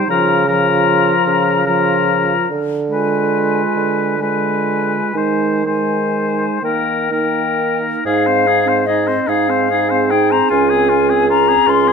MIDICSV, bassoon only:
0, 0, Header, 1, 2, 480
1, 0, Start_track
1, 0, Key_signature, -4, "major"
1, 0, Tempo, 789474
1, 54, Time_signature, 6, 3, 24, 8
1, 1015, Tempo, 843882
1, 2455, Tempo, 964630
1, 4375, Tempo, 825309
1, 5335, Tempo, 783290
1, 6693, End_track
2, 0, Start_track
2, 0, Title_t, "Bassoon"
2, 0, Program_c, 0, 70
2, 56, Note_on_c, 0, 49, 57
2, 685, Note_off_c, 0, 49, 0
2, 772, Note_on_c, 0, 49, 50
2, 1401, Note_off_c, 0, 49, 0
2, 1488, Note_on_c, 0, 50, 53
2, 2122, Note_off_c, 0, 50, 0
2, 2206, Note_on_c, 0, 50, 35
2, 2840, Note_off_c, 0, 50, 0
2, 2926, Note_on_c, 0, 51, 37
2, 3577, Note_off_c, 0, 51, 0
2, 3666, Note_on_c, 0, 51, 31
2, 4299, Note_off_c, 0, 51, 0
2, 4374, Note_on_c, 0, 44, 54
2, 5005, Note_off_c, 0, 44, 0
2, 5090, Note_on_c, 0, 44, 44
2, 5737, Note_off_c, 0, 44, 0
2, 5827, Note_on_c, 0, 37, 51
2, 6458, Note_off_c, 0, 37, 0
2, 6538, Note_on_c, 0, 37, 49
2, 6693, Note_off_c, 0, 37, 0
2, 6693, End_track
0, 0, End_of_file